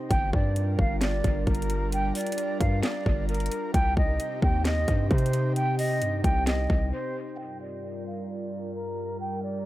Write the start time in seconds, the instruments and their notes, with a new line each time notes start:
0.10 808-style bass G1, analog synth pad G3 D4 F4 A#4, flute G5, kick, closed hi-hat
0.33 808-style bass G2, flute D5, kick
0.56 closed hi-hat
0.79 808-style bass G1, flute F5, kick
1.01 flute D5, snare, clap, closed hi-hat
1.24 808-style bass G1, kick, closed hi-hat
1.47 808-style bass G1, flute A#4, kick, closed hi-hat
1.55 closed hi-hat
1.62 closed hi-hat
1.70 closed hi-hat
1.92 flute G5, closed hi-hat
2.15 flute D5, closed hi-hat, open hi-hat
2.21 closed hi-hat
2.26 closed hi-hat
2.32 closed hi-hat
2.38 closed hi-hat
2.60 808-style bass G2, flute F5, kick, closed hi-hat
2.83 flute D5, snare, clap, closed hi-hat
3.06 808-style bass G1, kick
3.28 flute A#4, closed hi-hat
3.34 closed hi-hat
3.40 closed hi-hat
3.46 closed hi-hat
3.52 closed hi-hat
3.74 808-style bass C2, analog synth pad C3 C4 D#4 G4, flute G5, kick, closed hi-hat
3.97 808-style bass C2, flute D#5, kick
4.20 closed hi-hat
4.42 808-style bass D#2, flute G5, kick
4.65 flute D#5, snare, clap, closed hi-hat
4.88 808-style bass G2, kick, closed hi-hat
5.10 808-style bass C3, flute C5, kick, closed hi-hat
5.18 closed hi-hat
5.26 closed hi-hat
5.33 closed hi-hat
5.55 flute G5, closed hi-hat
5.79 flute D#5, open hi-hat
6.02 808-style bass G2, closed hi-hat
6.24 808-style bass C2, flute G5, kick, closed hi-hat
6.47 flute D#5, snare, clap, closed hi-hat
6.70 808-style bass C2, kick
6.92 flute C5
7.37 analog synth pad G2 G3 F4 A#4, flute G5
7.61 flute D5
8.06 flute F5
8.28 flute D5
8.75 flute A#4
9.20 analog synth pad G4, flute G5
9.43 flute D5